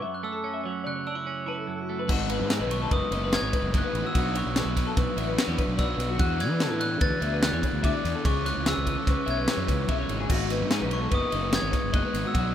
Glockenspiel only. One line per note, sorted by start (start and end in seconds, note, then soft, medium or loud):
0.00 0.18 C#6 medium
0.14 0.22 F#6 medium
0.24 0.88 E6 medium
0.87 1.07 F#6 loud
1.07 1.49 E6 medium
1.48 1.86 A5 medium
2.71 2.80 C#6 medium
2.93 3.34 D#6 medium
3.34 3.71 G#6 loud
3.78 4.04 F#6 medium
4.07 4.37 E6 loud
4.38 4.74 C#6 medium
5.79 6.21 E6 medium
6.20 6.39 F#6 loud
6.41 6.83 G#6 loud
6.81 7.02 F#6 loud
7.01 7.44 A6 loud
7.43 7.85 F#6 loud
7.85 8.26 D6 medium
8.26 8.44 C#6 loud
8.46 8.67 F#6 medium
8.68 9.09 E6 loud
9.09 9.18 C#6 medium
9.30 10.07 G#6 medium
10.93 11.13 C#6 loud
11.14 11.55 D#6 loud
11.55 11.96 G#6 loud
11.95 12.26 F#6 medium
12.27 12.55 E6 medium